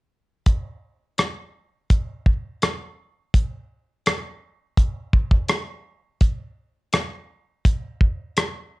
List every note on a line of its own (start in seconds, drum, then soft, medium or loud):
0.46 kick medium
0.46 closed hi-hat medium
1.18 cross-stick medium
1.18 closed hi-hat medium
1.90 kick medium
1.90 closed hi-hat medium
2.26 kick medium
2.62 cross-stick medium
2.62 closed hi-hat medium
3.34 kick medium
3.34 closed hi-hat medium
4.06 cross-stick loud
4.06 closed hi-hat medium
4.78 kick medium
4.78 closed hi-hat soft
5.13 kick medium
5.31 kick medium
5.49 cross-stick loud
5.49 closed hi-hat medium
6.21 kick medium
6.21 closed hi-hat soft
6.93 cross-stick loud
6.93 closed hi-hat medium
7.65 kick loud
7.65 closed hi-hat medium
8.01 kick medium
8.37 cross-stick loud
8.37 closed hi-hat medium